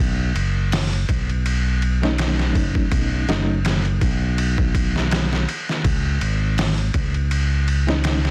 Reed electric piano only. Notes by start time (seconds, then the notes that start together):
2.02 F#3 A3 C#4 D#4
3.29 F#3 A3 C#4 D#4
7.87 E3 G#3 C#4 D#4